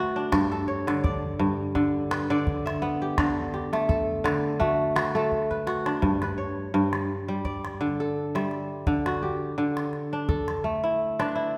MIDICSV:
0, 0, Header, 1, 3, 480
1, 0, Start_track
1, 0, Tempo, 711744
1, 217, Time_signature, 4, 2, 24, 8
1, 7808, End_track
2, 0, Start_track
2, 0, Title_t, "Kora"
2, 0, Program_c, 0, 46
2, 0, Note_on_c, 0, 50, 83
2, 0, Note_on_c, 0, 57, 77
2, 0, Note_on_c, 0, 66, 80
2, 0, Note_on_c, 0, 69, 72
2, 0, Note_on_c, 0, 71, 59
2, 108, Note_on_c, 0, 62, 64
2, 217, Note_on_c, 0, 43, 87
2, 251, Note_off_c, 0, 50, 0
2, 257, Note_off_c, 0, 66, 0
2, 345, Note_off_c, 0, 69, 0
2, 348, Note_on_c, 0, 69, 64
2, 457, Note_on_c, 0, 73, 64
2, 497, Note_off_c, 0, 62, 0
2, 589, Note_on_c, 0, 50, 82
2, 697, Note_off_c, 0, 71, 0
2, 699, Note_on_c, 0, 74, 63
2, 933, Note_off_c, 0, 43, 0
2, 941, Note_on_c, 0, 43, 84
2, 974, Note_off_c, 0, 57, 0
2, 1172, Note_off_c, 0, 50, 0
2, 1180, Note_on_c, 0, 50, 88
2, 1221, Note_off_c, 0, 73, 0
2, 1237, Note_off_c, 0, 69, 0
2, 1422, Note_on_c, 0, 71, 68
2, 1446, Note_off_c, 0, 74, 0
2, 1544, Note_off_c, 0, 50, 0
2, 1552, Note_on_c, 0, 50, 84
2, 1553, Note_on_c, 0, 74, 71
2, 1791, Note_on_c, 0, 76, 57
2, 1901, Note_on_c, 0, 59, 77
2, 2035, Note_on_c, 0, 67, 63
2, 2137, Note_off_c, 0, 50, 0
2, 2145, Note_on_c, 0, 50, 84
2, 2174, Note_off_c, 0, 43, 0
2, 2251, Note_off_c, 0, 71, 0
2, 2301, Note_off_c, 0, 74, 0
2, 2382, Note_off_c, 0, 67, 0
2, 2385, Note_on_c, 0, 67, 57
2, 2489, Note_off_c, 0, 76, 0
2, 2514, Note_on_c, 0, 57, 80
2, 2622, Note_on_c, 0, 69, 68
2, 2853, Note_off_c, 0, 50, 0
2, 2861, Note_on_c, 0, 50, 84
2, 3097, Note_off_c, 0, 57, 0
2, 3100, Note_on_c, 0, 57, 88
2, 3100, Note_on_c, 0, 66, 64
2, 3141, Note_off_c, 0, 67, 0
2, 3158, Note_off_c, 0, 59, 0
2, 3340, Note_off_c, 0, 66, 0
2, 3342, Note_on_c, 0, 66, 65
2, 3470, Note_off_c, 0, 57, 0
2, 3470, Note_off_c, 0, 69, 0
2, 3472, Note_on_c, 0, 69, 72
2, 3473, Note_on_c, 0, 57, 74
2, 3713, Note_on_c, 0, 71, 59
2, 3820, Note_off_c, 0, 66, 0
2, 3822, Note_on_c, 0, 66, 72
2, 3951, Note_on_c, 0, 62, 61
2, 4061, Note_on_c, 0, 43, 79
2, 4095, Note_off_c, 0, 50, 0
2, 4102, Note_off_c, 0, 66, 0
2, 4194, Note_off_c, 0, 71, 0
2, 4196, Note_on_c, 0, 71, 58
2, 4301, Note_on_c, 0, 73, 52
2, 4341, Note_off_c, 0, 62, 0
2, 4361, Note_off_c, 0, 69, 0
2, 4537, Note_off_c, 0, 43, 0
2, 4545, Note_on_c, 0, 43, 82
2, 4820, Note_off_c, 0, 57, 0
2, 4913, Note_on_c, 0, 55, 64
2, 5024, Note_on_c, 0, 74, 66
2, 5025, Note_off_c, 0, 71, 0
2, 5065, Note_off_c, 0, 73, 0
2, 5264, Note_on_c, 0, 50, 71
2, 5294, Note_off_c, 0, 55, 0
2, 5395, Note_on_c, 0, 69, 61
2, 5631, Note_on_c, 0, 55, 66
2, 5632, Note_on_c, 0, 76, 52
2, 5772, Note_off_c, 0, 74, 0
2, 5973, Note_off_c, 0, 50, 0
2, 5981, Note_on_c, 0, 50, 82
2, 6013, Note_off_c, 0, 43, 0
2, 6013, Note_off_c, 0, 55, 0
2, 6110, Note_on_c, 0, 66, 65
2, 6221, Note_on_c, 0, 67, 54
2, 6284, Note_off_c, 0, 69, 0
2, 6329, Note_off_c, 0, 76, 0
2, 6451, Note_off_c, 0, 50, 0
2, 6459, Note_on_c, 0, 50, 76
2, 6830, Note_on_c, 0, 62, 69
2, 6937, Note_on_c, 0, 69, 68
2, 7096, Note_off_c, 0, 66, 0
2, 7174, Note_off_c, 0, 67, 0
2, 7176, Note_on_c, 0, 57, 66
2, 7307, Note_on_c, 0, 64, 63
2, 7547, Note_off_c, 0, 62, 0
2, 7549, Note_on_c, 0, 62, 75
2, 7550, Note_on_c, 0, 71, 61
2, 7655, Note_off_c, 0, 64, 0
2, 7657, Note_on_c, 0, 64, 66
2, 7808, Note_off_c, 0, 50, 0
2, 7808, Note_off_c, 0, 57, 0
2, 7808, Note_off_c, 0, 62, 0
2, 7808, Note_off_c, 0, 64, 0
2, 7808, Note_off_c, 0, 69, 0
2, 7808, Note_off_c, 0, 71, 0
2, 7808, End_track
3, 0, Start_track
3, 0, Title_t, "Calabash"
3, 219, Note_on_c, 9, 36, 71
3, 219, Note_on_c, 9, 38, 78
3, 287, Note_off_c, 9, 36, 0
3, 287, Note_off_c, 9, 38, 0
3, 352, Note_on_c, 9, 38, 19
3, 420, Note_off_c, 9, 38, 0
3, 594, Note_on_c, 9, 38, 51
3, 661, Note_off_c, 9, 38, 0
3, 703, Note_on_c, 9, 36, 74
3, 771, Note_off_c, 9, 36, 0
3, 1183, Note_on_c, 9, 36, 66
3, 1183, Note_on_c, 9, 38, 21
3, 1250, Note_off_c, 9, 36, 0
3, 1250, Note_off_c, 9, 38, 0
3, 1425, Note_on_c, 9, 38, 69
3, 1492, Note_off_c, 9, 38, 0
3, 1559, Note_on_c, 9, 38, 21
3, 1627, Note_off_c, 9, 38, 0
3, 1665, Note_on_c, 9, 36, 61
3, 1732, Note_off_c, 9, 36, 0
3, 1802, Note_on_c, 9, 38, 54
3, 1869, Note_off_c, 9, 38, 0
3, 2144, Note_on_c, 9, 36, 67
3, 2144, Note_on_c, 9, 38, 75
3, 2211, Note_off_c, 9, 36, 0
3, 2211, Note_off_c, 9, 38, 0
3, 2386, Note_on_c, 9, 38, 22
3, 2454, Note_off_c, 9, 38, 0
3, 2518, Note_on_c, 9, 38, 51
3, 2586, Note_off_c, 9, 38, 0
3, 2625, Note_on_c, 9, 36, 69
3, 2693, Note_off_c, 9, 36, 0
3, 2870, Note_on_c, 9, 38, 60
3, 2938, Note_off_c, 9, 38, 0
3, 3110, Note_on_c, 9, 36, 71
3, 3177, Note_off_c, 9, 36, 0
3, 3348, Note_on_c, 9, 38, 76
3, 3415, Note_off_c, 9, 38, 0
3, 3484, Note_on_c, 9, 38, 22
3, 3551, Note_off_c, 9, 38, 0
3, 3587, Note_on_c, 9, 36, 37
3, 3654, Note_off_c, 9, 36, 0
3, 3715, Note_on_c, 9, 36, 44
3, 3783, Note_off_c, 9, 36, 0
3, 3826, Note_on_c, 9, 38, 52
3, 3894, Note_off_c, 9, 38, 0
3, 3953, Note_on_c, 9, 38, 52
3, 4021, Note_off_c, 9, 38, 0
3, 4065, Note_on_c, 9, 36, 59
3, 4132, Note_off_c, 9, 36, 0
3, 4193, Note_on_c, 9, 38, 38
3, 4261, Note_off_c, 9, 38, 0
3, 4672, Note_on_c, 9, 38, 51
3, 4740, Note_off_c, 9, 38, 0
3, 5023, Note_on_c, 9, 36, 60
3, 5023, Note_on_c, 9, 38, 20
3, 5091, Note_off_c, 9, 36, 0
3, 5091, Note_off_c, 9, 38, 0
3, 5156, Note_on_c, 9, 38, 48
3, 5224, Note_off_c, 9, 38, 0
3, 5636, Note_on_c, 9, 38, 54
3, 5704, Note_off_c, 9, 38, 0
3, 5741, Note_on_c, 9, 38, 21
3, 5808, Note_off_c, 9, 38, 0
3, 5980, Note_on_c, 9, 36, 67
3, 6047, Note_off_c, 9, 36, 0
3, 6110, Note_on_c, 9, 38, 46
3, 6178, Note_off_c, 9, 38, 0
3, 6588, Note_on_c, 9, 38, 51
3, 6655, Note_off_c, 9, 38, 0
3, 6697, Note_on_c, 9, 38, 19
3, 6764, Note_off_c, 9, 38, 0
3, 6938, Note_on_c, 9, 36, 64
3, 6938, Note_on_c, 9, 38, 19
3, 7005, Note_off_c, 9, 36, 0
3, 7005, Note_off_c, 9, 38, 0
3, 7067, Note_on_c, 9, 38, 47
3, 7135, Note_off_c, 9, 38, 0
3, 7552, Note_on_c, 9, 38, 52
3, 7619, Note_off_c, 9, 38, 0
3, 7658, Note_on_c, 9, 38, 21
3, 7726, Note_off_c, 9, 38, 0
3, 7808, End_track
0, 0, End_of_file